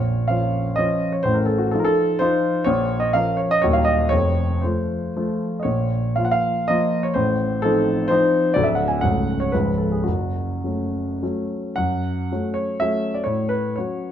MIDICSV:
0, 0, Header, 1, 2, 480
1, 0, Start_track
1, 0, Key_signature, -5, "minor"
1, 0, Tempo, 479616
1, 1235, Time_signature, 3, 2, 24, 8
1, 4118, Tempo, 516796
1, 6518, Tempo, 465477
1, 8426, Key_signature, 3, "minor"
1, 8918, Tempo, 512821
1, 9878, Tempo, 584226
1, 10838, Tempo, 536193
1, 11798, Tempo, 479616
1, 12758, Tempo, 513699
1, 13567, End_track
2, 0, Start_track
2, 0, Title_t, "Grand piano"
2, 0, Program_c, 0, 0
2, 0, Control_c, 0, 64, 127
2, 0, Note_on_c, 0, 34, 41
2, 0, Note_on_c, 0, 46, 50
2, 0, Note_on_c, 0, 73, 65
2, 276, Note_on_c, 0, 77, 67
2, 278, Note_off_c, 0, 34, 0
2, 280, Note_off_c, 0, 46, 0
2, 285, Note_off_c, 0, 73, 0
2, 299, Note_on_c, 0, 53, 38
2, 301, Note_on_c, 0, 61, 34
2, 302, Note_on_c, 0, 65, 37
2, 737, Note_off_c, 0, 53, 0
2, 739, Note_off_c, 0, 61, 0
2, 739, Note_off_c, 0, 65, 0
2, 758, Note_on_c, 0, 75, 77
2, 766, Note_off_c, 0, 77, 0
2, 782, Note_on_c, 0, 53, 44
2, 785, Note_on_c, 0, 61, 49
2, 787, Control_c, 0, 64, 0
2, 791, Note_on_c, 0, 65, 44
2, 1113, Note_off_c, 0, 75, 0
2, 1125, Note_on_c, 0, 73, 62
2, 1198, Note_off_c, 0, 53, 0
2, 1200, Note_off_c, 0, 61, 0
2, 1203, Note_off_c, 0, 65, 0
2, 1229, Note_on_c, 0, 72, 79
2, 1236, Note_off_c, 0, 73, 0
2, 1250, Note_on_c, 0, 33, 47
2, 1252, Note_on_c, 0, 45, 47
2, 1341, Note_on_c, 0, 70, 51
2, 1346, Note_off_c, 0, 72, 0
2, 1409, Control_c, 0, 64, 127
2, 1458, Note_on_c, 0, 69, 56
2, 1462, Note_off_c, 0, 70, 0
2, 1583, Note_off_c, 0, 69, 0
2, 1585, Note_on_c, 0, 66, 49
2, 1708, Note_off_c, 0, 33, 0
2, 1708, Note_off_c, 0, 45, 0
2, 1713, Note_off_c, 0, 66, 0
2, 1715, Note_on_c, 0, 69, 64
2, 1724, Control_c, 0, 64, 0
2, 1741, Note_on_c, 0, 53, 38
2, 1745, Note_on_c, 0, 63, 34
2, 1746, Note_on_c, 0, 65, 39
2, 1788, Note_off_c, 0, 69, 0
2, 1797, Note_on_c, 0, 70, 60
2, 1846, Note_on_c, 0, 69, 82
2, 1865, Note_off_c, 0, 70, 0
2, 2187, Note_off_c, 0, 53, 0
2, 2189, Note_off_c, 0, 63, 0
2, 2190, Note_off_c, 0, 65, 0
2, 2191, Note_on_c, 0, 72, 86
2, 2207, Note_off_c, 0, 69, 0
2, 2209, Note_on_c, 0, 53, 46
2, 2212, Note_on_c, 0, 63, 51
2, 2215, Note_on_c, 0, 65, 57
2, 2616, Note_off_c, 0, 53, 0
2, 2618, Note_off_c, 0, 63, 0
2, 2619, Note_off_c, 0, 65, 0
2, 2647, Note_off_c, 0, 72, 0
2, 2647, Note_on_c, 0, 73, 85
2, 2666, Note_on_c, 0, 34, 50
2, 2666, Note_on_c, 0, 46, 60
2, 2840, Control_c, 0, 64, 127
2, 3000, Note_on_c, 0, 75, 70
2, 3003, Note_off_c, 0, 73, 0
2, 3124, Note_off_c, 0, 34, 0
2, 3124, Note_off_c, 0, 46, 0
2, 3130, Note_off_c, 0, 75, 0
2, 3136, Note_on_c, 0, 77, 83
2, 3149, Control_c, 0, 64, 0
2, 3151, Note_on_c, 0, 53, 44
2, 3156, Note_on_c, 0, 61, 42
2, 3164, Note_on_c, 0, 70, 47
2, 3371, Note_on_c, 0, 73, 65
2, 3388, Note_off_c, 0, 77, 0
2, 3502, Note_off_c, 0, 73, 0
2, 3513, Note_on_c, 0, 75, 91
2, 3601, Note_off_c, 0, 53, 0
2, 3603, Note_off_c, 0, 61, 0
2, 3607, Note_off_c, 0, 70, 0
2, 3619, Note_on_c, 0, 73, 86
2, 3634, Note_off_c, 0, 75, 0
2, 3640, Note_on_c, 0, 39, 59
2, 3643, Note_on_c, 0, 54, 46
2, 3644, Note_on_c, 0, 27, 58
2, 3647, Note_on_c, 0, 58, 44
2, 3650, Note_on_c, 0, 70, 47
2, 3736, Note_on_c, 0, 77, 67
2, 3747, Note_off_c, 0, 73, 0
2, 3799, Control_c, 0, 64, 127
2, 3849, Note_on_c, 0, 75, 74
2, 3867, Note_off_c, 0, 77, 0
2, 4083, Note_off_c, 0, 54, 0
2, 4085, Note_off_c, 0, 58, 0
2, 4086, Note_off_c, 0, 70, 0
2, 4094, Note_on_c, 0, 73, 85
2, 4104, Note_off_c, 0, 75, 0
2, 4107, Note_off_c, 0, 39, 0
2, 4109, Note_off_c, 0, 27, 0
2, 4112, Note_on_c, 0, 41, 51
2, 4117, Note_on_c, 0, 29, 49
2, 4127, Control_c, 0, 64, 0
2, 4273, Control_c, 0, 64, 127
2, 4576, Note_off_c, 0, 41, 0
2, 4578, Note_off_c, 0, 29, 0
2, 4580, Note_on_c, 0, 72, 53
2, 4581, Note_off_c, 0, 73, 0
2, 4597, Note_on_c, 0, 53, 34
2, 4604, Control_c, 0, 64, 0
2, 4605, Note_on_c, 0, 57, 35
2, 4607, Note_on_c, 0, 65, 32
2, 5054, Note_off_c, 0, 53, 0
2, 5058, Note_off_c, 0, 57, 0
2, 5059, Note_off_c, 0, 65, 0
2, 5093, Note_on_c, 0, 57, 45
2, 5095, Note_on_c, 0, 53, 40
2, 5101, Note_on_c, 0, 65, 41
2, 5319, Note_off_c, 0, 72, 0
2, 5493, Note_on_c, 0, 75, 42
2, 5522, Note_off_c, 0, 57, 0
2, 5523, Note_off_c, 0, 53, 0
2, 5523, Note_on_c, 0, 73, 64
2, 5526, Note_off_c, 0, 65, 0
2, 5540, Note_on_c, 0, 46, 48
2, 5543, Note_on_c, 0, 34, 39
2, 5558, Note_off_c, 0, 75, 0
2, 5741, Control_c, 0, 64, 127
2, 6014, Note_on_c, 0, 77, 68
2, 6017, Note_off_c, 0, 46, 0
2, 6018, Note_off_c, 0, 34, 0
2, 6023, Note_off_c, 0, 73, 0
2, 6035, Note_on_c, 0, 53, 32
2, 6036, Note_on_c, 0, 58, 33
2, 6039, Note_on_c, 0, 65, 38
2, 6054, Control_c, 0, 64, 0
2, 6098, Note_on_c, 0, 78, 58
2, 6099, Note_off_c, 0, 77, 0
2, 6161, Note_on_c, 0, 77, 77
2, 6175, Note_off_c, 0, 78, 0
2, 6478, Note_off_c, 0, 53, 0
2, 6478, Note_off_c, 0, 58, 0
2, 6480, Note_off_c, 0, 65, 0
2, 6498, Note_on_c, 0, 75, 81
2, 6507, Note_off_c, 0, 77, 0
2, 6515, Note_on_c, 0, 53, 48
2, 6519, Note_on_c, 0, 58, 47
2, 6530, Note_on_c, 0, 65, 47
2, 6860, Note_on_c, 0, 73, 69
2, 6866, Note_off_c, 0, 75, 0
2, 6950, Note_off_c, 0, 53, 0
2, 6952, Note_off_c, 0, 58, 0
2, 6958, Note_off_c, 0, 65, 0
2, 6971, Note_on_c, 0, 72, 75
2, 6985, Note_off_c, 0, 73, 0
2, 6989, Note_on_c, 0, 33, 47
2, 6989, Note_on_c, 0, 45, 53
2, 7176, Control_c, 0, 64, 127
2, 7461, Note_off_c, 0, 33, 0
2, 7461, Note_off_c, 0, 45, 0
2, 7466, Note_off_c, 0, 72, 0
2, 7469, Note_on_c, 0, 69, 82
2, 7486, Note_on_c, 0, 53, 41
2, 7496, Note_on_c, 0, 60, 39
2, 7502, Note_on_c, 0, 63, 44
2, 7927, Note_off_c, 0, 53, 0
2, 7932, Note_off_c, 0, 60, 0
2, 7935, Note_off_c, 0, 63, 0
2, 7940, Note_on_c, 0, 72, 83
2, 7960, Note_off_c, 0, 69, 0
2, 7966, Note_on_c, 0, 53, 50
2, 7972, Note_on_c, 0, 60, 54
2, 7976, Control_c, 0, 64, 0
2, 7976, Note_on_c, 0, 63, 58
2, 8386, Note_off_c, 0, 53, 0
2, 8389, Note_off_c, 0, 60, 0
2, 8391, Note_off_c, 0, 63, 0
2, 8414, Note_off_c, 0, 72, 0
2, 8414, Note_on_c, 0, 74, 74
2, 8430, Note_on_c, 0, 54, 37
2, 8434, Note_on_c, 0, 26, 49
2, 8435, Note_on_c, 0, 38, 54
2, 8436, Note_on_c, 0, 57, 39
2, 8446, Note_on_c, 0, 62, 38
2, 8515, Note_on_c, 0, 76, 60
2, 8534, Note_off_c, 0, 74, 0
2, 8597, Control_c, 0, 64, 127
2, 8635, Note_on_c, 0, 78, 60
2, 8647, Note_off_c, 0, 76, 0
2, 8766, Note_on_c, 0, 80, 58
2, 8773, Note_off_c, 0, 78, 0
2, 8878, Note_off_c, 0, 54, 0
2, 8881, Note_off_c, 0, 57, 0
2, 8886, Note_off_c, 0, 62, 0
2, 8903, Note_on_c, 0, 78, 73
2, 8907, Note_off_c, 0, 26, 0
2, 8907, Note_off_c, 0, 38, 0
2, 8908, Note_off_c, 0, 80, 0
2, 8921, Note_on_c, 0, 54, 33
2, 8925, Note_on_c, 0, 37, 44
2, 8926, Note_on_c, 0, 25, 41
2, 8930, Control_c, 0, 64, 0
2, 8930, Note_on_c, 0, 57, 35
2, 8935, Note_on_c, 0, 61, 33
2, 9110, Control_c, 0, 64, 127
2, 9267, Note_on_c, 0, 73, 68
2, 9272, Note_off_c, 0, 78, 0
2, 9359, Note_off_c, 0, 54, 0
2, 9364, Note_off_c, 0, 57, 0
2, 9366, Note_off_c, 0, 61, 0
2, 9382, Note_on_c, 0, 71, 61
2, 9384, Note_off_c, 0, 37, 0
2, 9385, Note_off_c, 0, 25, 0
2, 9389, Note_off_c, 0, 73, 0
2, 9399, Note_on_c, 0, 53, 36
2, 9400, Note_on_c, 0, 37, 46
2, 9401, Note_on_c, 0, 25, 40
2, 9403, Control_c, 0, 64, 0
2, 9405, Note_on_c, 0, 56, 35
2, 9414, Note_on_c, 0, 61, 32
2, 9549, Control_c, 0, 64, 127
2, 9619, Note_on_c, 0, 69, 40
2, 9623, Note_off_c, 0, 71, 0
2, 9747, Note_off_c, 0, 69, 0
2, 9753, Note_on_c, 0, 68, 42
2, 9843, Note_off_c, 0, 53, 0
2, 9846, Note_off_c, 0, 56, 0
2, 9851, Note_off_c, 0, 61, 0
2, 9862, Note_on_c, 0, 66, 45
2, 9867, Note_off_c, 0, 37, 0
2, 9868, Note_off_c, 0, 25, 0
2, 9879, Note_off_c, 0, 68, 0
2, 9881, Note_on_c, 0, 30, 33
2, 9884, Note_on_c, 0, 42, 39
2, 9892, Control_c, 0, 64, 0
2, 10065, Control_c, 0, 64, 127
2, 10346, Note_off_c, 0, 30, 0
2, 10347, Note_off_c, 0, 42, 0
2, 10362, Note_on_c, 0, 54, 24
2, 10371, Note_on_c, 0, 57, 27
2, 10375, Note_on_c, 0, 61, 26
2, 10807, Note_off_c, 0, 54, 0
2, 10811, Note_off_c, 0, 57, 0
2, 10813, Note_off_c, 0, 61, 0
2, 10831, Note_off_c, 0, 66, 0
2, 10844, Note_on_c, 0, 54, 34
2, 10846, Note_on_c, 0, 57, 33
2, 10850, Note_on_c, 0, 61, 33
2, 10852, Control_c, 0, 64, 0
2, 11294, Note_off_c, 0, 54, 0
2, 11296, Note_off_c, 0, 57, 0
2, 11297, Note_off_c, 0, 61, 0
2, 11318, Note_on_c, 0, 78, 74
2, 11336, Note_on_c, 0, 42, 46
2, 11534, Control_c, 0, 64, 127
2, 11789, Note_off_c, 0, 42, 0
2, 11815, Control_c, 0, 64, 0
2, 11824, Note_on_c, 0, 54, 31
2, 11827, Note_on_c, 0, 57, 34
2, 11827, Note_on_c, 0, 61, 37
2, 12044, Note_on_c, 0, 73, 63
2, 12047, Note_off_c, 0, 78, 0
2, 12266, Note_off_c, 0, 54, 0
2, 12268, Note_off_c, 0, 57, 0
2, 12268, Note_off_c, 0, 61, 0
2, 12289, Note_off_c, 0, 73, 0
2, 12303, Note_on_c, 0, 76, 78
2, 12315, Note_on_c, 0, 54, 41
2, 12327, Note_on_c, 0, 57, 42
2, 12327, Note_on_c, 0, 61, 46
2, 12649, Note_off_c, 0, 76, 0
2, 12650, Note_on_c, 0, 74, 47
2, 12729, Note_off_c, 0, 54, 0
2, 12735, Note_off_c, 0, 57, 0
2, 12735, Note_off_c, 0, 61, 0
2, 12743, Note_on_c, 0, 73, 66
2, 12762, Note_off_c, 0, 74, 0
2, 12768, Note_on_c, 0, 45, 47
2, 12964, Control_c, 0, 64, 127
2, 12975, Note_off_c, 0, 73, 0
2, 12979, Note_on_c, 0, 71, 65
2, 13218, Note_off_c, 0, 45, 0
2, 13226, Note_off_c, 0, 71, 0
2, 13230, Note_on_c, 0, 73, 56
2, 13238, Control_c, 0, 64, 0
2, 13252, Note_on_c, 0, 54, 32
2, 13253, Note_on_c, 0, 66, 38
2, 13255, Note_on_c, 0, 61, 36
2, 13567, Note_off_c, 0, 54, 0
2, 13567, Note_off_c, 0, 61, 0
2, 13567, Note_off_c, 0, 66, 0
2, 13567, Note_off_c, 0, 73, 0
2, 13567, End_track
0, 0, End_of_file